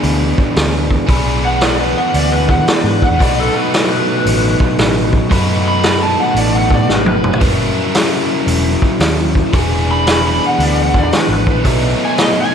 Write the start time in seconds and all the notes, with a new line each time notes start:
Already playing: E3 B3 D4 G#4 B4
0.03 D2, open hi-hat
0.38 kick
0.56 D2, snare, open hi-hat
0.91 kick
1.07 B1 E3 B3 D4 G#4 B4, kick, open hi-hat
1.45 F#5
1.61 D5, snare, open hi-hat
1.81 B4
1.97 F#5
2.14 D2 D5, open hi-hat
2.32 B4
2.49 F#5, kick
2.58 E3
2.68 D5, snare, open hi-hat
2.84 G#2 B4
3.02 F#5, kick
3.11 E2
3.19 B1 B2 F#3 A3 D#4 F#4 B4 D5, kick, open hi-hat
3.40 A4
3.57 B4
3.74 snare, open hi-hat
4.26 A1, open hi-hat
4.60 kick
4.78 A1, snare, open hi-hat
5.13 kick
5.29 F#2 B2 F#3 A3 D#4 F#4 B4, kick, open hi-hat
5.68 B5
5.83 snare, open hi-hat
6.02 A5
6.20 F#5
6.35 A1 D5, open hi-hat
6.55 F#5
6.71 D5, kick
6.79 B2
6.88 G#1 B4, snare
7.06 B4, high tom
7.23 F#1, mid tom
7.33 floor tom
7.40 F#1 F#3 C#4 E4 A#4, kick, open hi-hat
7.95 snare, open hi-hat
8.47 E1, open hi-hat
8.82 kick
9.00 D#2, snare, open hi-hat
9.35 kick
9.53 E1 E3 B3 D4 G#4, kick, open hi-hat
9.91 B5
10.07 snare, open hi-hat
10.27 B5
10.46 F#5
10.59 D2, open hi-hat
10.63 D5
10.82 F#5
10.94 kick
10.98 D5
11.03 E2
11.12 B4, snare, open hi-hat
11.29 G#1
11.34 B4
11.47 kick
11.55 A#1
11.64 B1 B2 F#3 A3 D#4, kick, open hi-hat
12.05 G#5
12.18 snare, open hi-hat
12.22 D#5
12.41 G#5